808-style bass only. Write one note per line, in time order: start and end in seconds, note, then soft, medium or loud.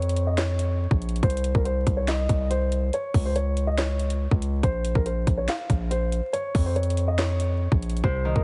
0.00 0.87 F2 loud
0.91 1.22 A#1 loud
1.23 1.54 C2 loud
1.55 1.85 C2 loud
1.87 2.28 C2 loud
2.29 2.91 C2 loud
3.14 4.27 C#2 loud
4.31 4.62 C#2 loud
4.63 4.94 A#1 loud
4.95 5.26 A#1 loud
5.27 5.48 A#1 loud
5.70 6.21 A#1 loud
6.55 7.68 F2 loud
7.72 8.02 A#1 loud
8.04 8.34 C2 loud
8.36 8.44 C2 loud